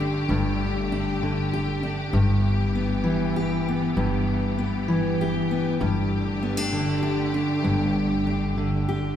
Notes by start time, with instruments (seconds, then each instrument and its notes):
Already playing: steel-string acoustic guitar G2 D3 G4, string section D3 A3 G4
0.00 steel-string acoustic guitar D4
0.29 upright bass G1, steel-string acoustic guitar G2
0.92 steel-string acoustic guitar D4
1.23 steel-string acoustic guitar D3
1.53 steel-string acoustic guitar G4
1.83 steel-string acoustic guitar D4
2.13 upright bass G1, steel-string acoustic guitar G2, string section E3 B3
2.75 steel-string acoustic guitar B3
3.04 steel-string acoustic guitar E3
3.36 steel-string acoustic guitar G4
3.69 steel-string acoustic guitar B3
3.97 upright bass G1, steel-string acoustic guitar G2
4.59 steel-string acoustic guitar B3
4.88 steel-string acoustic guitar E3
5.21 steel-string acoustic guitar G4
5.51 steel-string acoustic guitar B3
5.80 upright bass G1, steel-string acoustic guitar G2, string section D3 A3 G4
6.43 steel-string acoustic guitar B3
6.57 steel-string acoustic guitar D4
6.72 steel-string acoustic guitar D3
7.03 steel-string acoustic guitar G4
7.34 steel-string acoustic guitar D4
7.63 upright bass G1, steel-string acoustic guitar G2
8.27 steel-string acoustic guitar D4
8.58 steel-string acoustic guitar D3
8.89 steel-string acoustic guitar G4